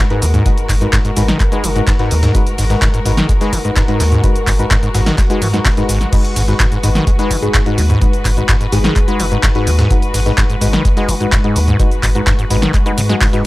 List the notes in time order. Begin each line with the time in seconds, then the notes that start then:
Already playing: G#3 F#4 A#4
0.10 G#2 G#3 D#4 F#4 B4, closed hi-hat
0.22 D#2 G#3, closed hi-hat, open hi-hat, shaker
0.34 G#2, closed hi-hat, shaker
0.46 G#3 D#4 F#4 B4, kick, closed hi-hat, shaker
0.58 closed hi-hat, shaker
0.69 G#1 G#2, kick, clap, closed hi-hat, open hi-hat, shaker
0.81 G#2 G#3 D#4 F#4 B4, closed hi-hat, shaker
0.93 G#2, kick, snare, clap, closed hi-hat, shaker
1.05 G#2, closed hi-hat, shaker
1.17 G#1 G#2 G#3 D#4 F#4 B4, snare, closed hi-hat, open hi-hat, shaker
1.28 D#3, snare, closed hi-hat, shaker
1.40 G#3, kick, clap, closed hi-hat, shaker
1.52 G#3 D#4 F#4 B4, closed hi-hat, shaker
1.64 F#1 D#3, closed hi-hat, open hi-hat, shaker
1.76 G#2 G#3 D#4 F#4 B4, closed hi-hat, shaker
1.87 G#2, kick, snare, clap, closed hi-hat, shaker
1.99 G#2 G#3 D#4 F#4 B4, snare, closed hi-hat
2.11 D#2 G#3, closed hi-hat, open hi-hat, shaker
2.23 G#2, snare, closed hi-hat, shaker
2.35 G#3 D#4 F#4 B4, kick, closed hi-hat, shaker
2.46 closed hi-hat, shaker
2.58 G#1 G#2, open hi-hat, shaker
2.70 G#2 G#3 D#4 F#4 B4, snare, closed hi-hat, shaker
2.82 G#2, kick, snare, clap, closed hi-hat, shaker
2.94 G#2, closed hi-hat, shaker
3.05 G#1 G#2 G#3 D#4 F#4 B4, closed hi-hat, open hi-hat, shaker
3.17 D#3, snare, closed hi-hat, shaker
3.29 G#3, kick, closed hi-hat, shaker
3.41 G#3 D#4 F#4 B4, snare, closed hi-hat, shaker
3.53 F#1 D#3, kick, closed hi-hat, open hi-hat, shaker
3.65 G#2 G#3 D#4 F#4 B4, closed hi-hat, shaker
3.76 G#2, kick, snare, clap, closed hi-hat, shaker
3.88 G#2 G#3 D#4 F#4 B4, closed hi-hat
4.00 D#2 G#3, snare, closed hi-hat, open hi-hat, shaker
4.12 G#2, closed hi-hat, shaker
4.24 G#3 D#4 F#4 B4, kick, closed hi-hat, shaker
4.36 closed hi-hat, shaker
4.47 G#1 G#2, kick, clap, closed hi-hat, open hi-hat, shaker
4.59 G#2 G#3 D#4 F#4 B4, closed hi-hat, shaker
4.71 G#2, kick, snare, clap, closed hi-hat, shaker
4.83 G#2, closed hi-hat, shaker
4.94 G#1 G#2 G#3 D#4 F#4 B4, snare, closed hi-hat, open hi-hat, shaker
5.06 D#3, snare, closed hi-hat, shaker
5.18 G#3, kick, snare, clap, closed hi-hat, shaker
5.30 G#3 D#4 F#4 B4, closed hi-hat, shaker
5.42 G#2 D#3, closed hi-hat, open hi-hat, shaker
5.53 G#2 G#3 D#4 F#4 B4, snare, closed hi-hat, shaker
5.65 B2, kick, snare, clap, closed hi-hat, open hi-hat, shaker
5.77 G#2 G#3 D#4 F#4 B4, snare, closed hi-hat, shaker
5.89 G#1 G#2, open hi-hat, shaker
6.01 snare, closed hi-hat, shaker
6.12 G#2 G#3 D#4 F#4 B4, kick, closed hi-hat, crash, shaker
6.24 closed hi-hat, shaker
6.36 G#1 G#2, open hi-hat, shaker
6.48 G#2 G#3 D#4 F#4 B4, snare, closed hi-hat, shaker
6.60 G#2, kick, snare, clap, closed hi-hat, shaker
6.72 G#2, closed hi-hat, shaker
6.83 G#1 G#2 G#3 D#4 F#4 B4, closed hi-hat, open hi-hat, shaker
6.95 D#3, snare, closed hi-hat, shaker
7.07 G#3, kick, closed hi-hat, shaker
7.19 G#3 D#4 F#4 B4, snare, closed hi-hat, shaker
7.31 F#1 D#3, kick, closed hi-hat, open hi-hat, shaker
7.42 G#2 G#3 D#4 F#4 G#4 B4, closed hi-hat, shaker
7.54 G#2, kick, snare, clap, closed hi-hat, shaker
7.66 G#2 G#3 D#4 F#4 B4, closed hi-hat
7.78 D#2 G#3, closed hi-hat, open hi-hat, shaker
7.90 G#2, closed hi-hat, shaker
8.01 G#2 G#3 D#4 F#4 B4, kick, closed hi-hat, shaker
8.13 closed hi-hat, shaker
8.25 G#1 G#2, kick, clap, closed hi-hat, open hi-hat, shaker
8.37 G#2 G#3 D#4 F#4 B4, closed hi-hat, shaker
8.49 G#2, kick, snare, clap, closed hi-hat, shaker
8.61 G#2, closed hi-hat, shaker
8.72 G#1 G#2 G#3 D#4 F#4 G#4 B4, snare, closed hi-hat, open hi-hat, shaker
8.84 D#3, snare, closed hi-hat, shaker
8.96 kick, clap, closed hi-hat, shaker
9.08 G#3 D#4 F#4 B4, closed hi-hat, shaker
9.20 F#1 D#3, closed hi-hat, open hi-hat, shaker
9.31 G#2 G#3 D#4 F#4 B4, closed hi-hat, shaker
9.43 G#2, kick, snare, clap, closed hi-hat, shaker
9.55 G#2 G#3 D#4 F#4 B4, snare, closed hi-hat
9.67 D#2 G#3, closed hi-hat, open hi-hat, shaker
9.79 G#2, snare, closed hi-hat, shaker
9.90 G#3 D#4 F#4 B4, kick, closed hi-hat, shaker
10.02 closed hi-hat, shaker
10.14 G#1 G#2, open hi-hat, shaker
10.26 G#2 G#3 D#4 F#4 B4, snare, closed hi-hat, shaker
10.38 G#2, kick, snare, clap, closed hi-hat, shaker
10.50 G#2, closed hi-hat, shaker
10.61 G#1 G#2 G#3 D#4 F#4 B4, closed hi-hat, open hi-hat, shaker
10.73 D#3, snare, closed hi-hat, shaker
10.85 G#3, kick, closed hi-hat, shaker
10.97 G#3 D#4 F#4 B4, snare, closed hi-hat, shaker
11.09 F#1 D#3, kick, closed hi-hat, open hi-hat, shaker
11.20 G#2 G#3 D#4 F#4 B4, closed hi-hat, shaker
11.32 G#2, kick, snare, clap, closed hi-hat, shaker
11.44 G#2 G#3 D#4 F#4 B4, closed hi-hat
11.56 D#2 G#3, closed hi-hat, open hi-hat, shaker
11.68 G#2, closed hi-hat, shaker
11.79 G#3 D#4 F#4 B4, kick, closed hi-hat, shaker
11.91 closed hi-hat, shaker
12.03 G#1 G#2, kick, clap, closed hi-hat, open hi-hat, shaker
12.15 G#2 G#3 D#4 F#4 B4, closed hi-hat, shaker
12.27 G#2, kick, snare, clap, closed hi-hat, shaker
12.39 G#2, closed hi-hat, shaker
12.50 G#1 G#2 G#3 D#4 F#4 B4, snare, closed hi-hat, open hi-hat, shaker
12.62 D#3, snare, closed hi-hat, shaker
12.74 G#3, kick, clap, closed hi-hat, shaker
12.86 G#3 D#4 F#4 B4, closed hi-hat, shaker
12.98 G#2 C#3, closed hi-hat, open hi-hat, shaker
13.09 G#3 D#4 F#4 B4, snare, closed hi-hat, shaker
13.21 G#2, kick, snare, clap, closed hi-hat, open hi-hat, shaker
13.33 G#2 G#3 D#4 F#4 B4, snare, closed hi-hat, shaker